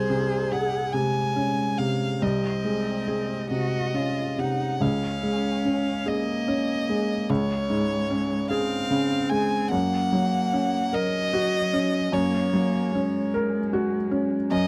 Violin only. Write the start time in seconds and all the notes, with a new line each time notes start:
Already playing: C5
0.52 F#5
0.92 G#5
1.78 F5
2.22 D#5
3.50 D#5
4.38 F#5
4.81 F5
6.07 D#5
7.29 C#5
8.50 F5
9.30 G#5
9.71 F#5
10.94 D#5
12.14 C#5
14.51 D#5